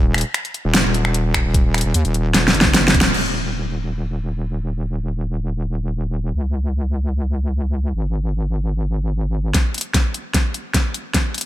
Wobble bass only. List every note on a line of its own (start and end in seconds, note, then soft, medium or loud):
0.00 0.13 D#1 loud
0.14 0.23 D#1 loud
0.65 0.83 D#1 loud
0.85 1.43 D#1 loud
1.45 1.83 D#1 medium
1.85 1.93 D#1 loud
1.94 2.03 D#2 loud
2.05 2.33 D#1 loud
2.34 2.53 D#1 loud
2.54 2.93 F#1 loud
2.94 3.13 D#1 loud
3.14 6.33 D#1 medium
6.34 7.93 C#2 medium
7.94 9.53 G#1 medium